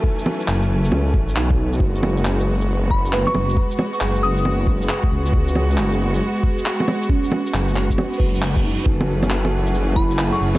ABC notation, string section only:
X:1
M:4/4
L:1/8
Q:"Swing 16ths" 1/4=136
K:G#phr
V:1 name="String section"
[E,F,A,Cg]8 | [G,B,F]8- | [G,B,F]8- | [G,B,F]8- |
[G,B,F]8 | [E,F,A,CG]8 |]